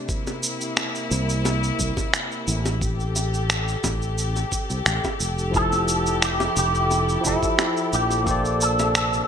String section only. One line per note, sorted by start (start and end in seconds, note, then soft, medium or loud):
0.00 5.50 C3 medium
0.08 2.79 A#3 medium
0.08 2.79 E4 medium
2.81 8.23 G4 medium
2.81 9.28 A4 medium
5.54 8.24 E4 medium
8.27 9.28 C3 medium
8.27 9.28 D4 medium